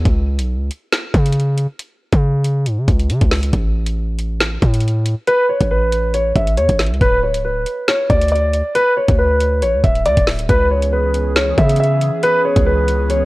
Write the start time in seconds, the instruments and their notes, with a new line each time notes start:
0.06 808-style bass C#2, kick, closed hi-hat
0.39 808-style bass B1, closed hi-hat
0.55 808-style bass C#2
0.71 closed hi-hat
0.92 snare, closed hi-hat
1.14 808-style bass C#3, kick, closed hi-hat
1.26 closed hi-hat
1.33 closed hi-hat
1.40 closed hi-hat
1.58 closed hi-hat
1.79 closed hi-hat
2.13 808-style bass C#3, kick, closed hi-hat
2.45 closed hi-hat
2.66 808-style bass G#2, closed hi-hat
2.78 808-style bass C#3
2.88 808-style bass C#2, kick, closed hi-hat
3.00 closed hi-hat
3.10 808-style bass C#3, closed hi-hat
3.21 808-style bass C#2, kick, closed hi-hat
3.31 snare, closed hi-hat, open hi-hat
3.43 closed hi-hat
3.53 808-style bass A1, kick, closed hi-hat
3.86 closed hi-hat
4.18 closed hi-hat
4.40 snare, closed hi-hat
4.62 808-style bass A2, kick, closed hi-hat
4.74 closed hi-hat
4.80 closed hi-hat
4.88 closed hi-hat
5.05 closed hi-hat
5.27 grand piano B4, closed hi-hat
5.49 grand piano C#5
5.60 808-style bass A1, kick, closed hi-hat
5.71 grand piano B4
5.92 closed hi-hat
6.14 grand piano C#5, closed hi-hat
6.36 808-style bass A1, grand piano E5, kick, closed hi-hat
6.47 closed hi-hat
6.58 808-style bass E2, grand piano C#5, closed hi-hat
6.69 808-style bass A1, kick, closed hi-hat
6.79 snare, closed hi-hat, open hi-hat
6.87 closed hi-hat
6.91 808-style bass C#2, closed hi-hat
7.01 808-style bass D1, grand piano B4, kick, closed hi-hat
7.23 grand piano C#5
7.34 808-style bass C#1, closed hi-hat
7.45 grand piano B4
7.50 808-style bass D1
7.66 closed hi-hat
7.88 grand piano C#5, snare, closed hi-hat
8.10 808-style bass D2, grand piano D5, kick, closed hi-hat
8.21 closed hi-hat
8.28 grand piano D5, closed hi-hat
8.35 closed hi-hat
8.53 closed hi-hat
8.75 grand piano B4, closed hi-hat
8.97 grand piano C#5
9.08 808-style bass D2, kick, closed hi-hat
9.18 grand piano B4
9.40 closed hi-hat
9.62 808-style bass A1, grand piano C#5, closed hi-hat
9.73 808-style bass D2
9.84 808-style bass D1, grand piano E5, kick, closed hi-hat
9.95 closed hi-hat
10.05 808-style bass D2, grand piano D5, closed hi-hat
10.17 808-style bass D1, kick, closed hi-hat
10.27 snare, closed hi-hat, open hi-hat
10.39 closed hi-hat
10.49 808-style bass C#2, analog synth pad E3 B3 C#4 G#4, grand piano B4, kick, closed hi-hat
10.71 grand piano C#5
10.82 closed hi-hat
10.93 grand piano B4
11.14 closed hi-hat
11.36 grand piano C#5, snare, closed hi-hat
11.58 808-style bass C#3, grand piano E5, kick, closed hi-hat
11.69 closed hi-hat
11.76 grand piano E5, closed hi-hat
11.83 closed hi-hat
12.01 closed hi-hat
12.23 grand piano B4, closed hi-hat
12.45 grand piano C#5
12.56 808-style bass C#2, kick, closed hi-hat
12.66 grand piano B4
12.88 closed hi-hat
13.10 grand piano C#5, closed hi-hat